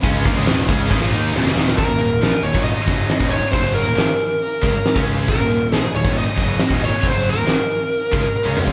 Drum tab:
HH |o-o-o-o-o-o-----|o---o---o---o---|o---o---o---o---|o---o---o---o---|
SD |----o-------oooo|----o-------o---|----o-------o---|----o-------o---|
T1 |----------------|----------------|----------------|----------------|
T2 |----------------|----------------|----------------|----------------|
BD |o-o---o-o-------|o------o--o--o--|o---------o--o--|o------o--o--o--|

HH |o---o---o-------|
SD |----o-----------|
T1 |------------o---|
T2 |--------------o-|
BD |o---------o----o|